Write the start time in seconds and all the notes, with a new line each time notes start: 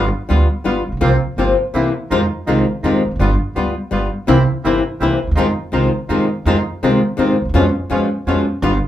0.28 D2 G3 B3 F4
0.64 G1 G3 B3 F4
0.88 A1 A#1
0.97 B1 A#3
1.01 C2 C3 F3 A#3 C4 F4
1.37 G1 C3 F3 A#3 C4 F4
1.73 C2 C3 E3 A#3 C4 E4
2.10 F2 C3 D#3 G#3 C4 D#4 F4
2.46 C2 C3 D#3 G#3 C4 D#4 F4
2.83 F2 C3 D#3 G#3 C4 D#4 F4
3.06 E1
3.11 F1
3.16 F#1 G1 G3 B3 F4
3.20 G3 B3 F4
3.55 D2 G3 B3 F4
3.91 G1 G3 B3 F4
4.27 C2 C3 E3 A#3 C4 E4
4.63 G1 C3 E3 A#3 C4 E4
4.99 C2 C3 E3 A#3 C4 E4
5.23 D2 D#2
5.31 E2 G#3
5.35 F2 C3 D#3 G#3 C4 D#4 F4
5.72 C2 C3 D#3 G#3 C4 D#4 F4
6.08 F2 C3 D#3 G#3 C4 D#4 F4
6.45 F2 C3 D#3 G#3 C4 D#4 F4
6.82 C2 C3 D#3 G#3 C4 D#4 F4
7.17 F2 C3 D#3 G#3 C4 D#4 F4
7.41 D2 D#2
7.49 E2
7.54 F2 B2 F3 G#3 B3 C#4 F4
7.90 F2 B2 F3 G#3 B3 C#4 F4
8.26 F2 B2 F3 G#3 B3 C#4 F4
8.62 G1 G3 B3 F4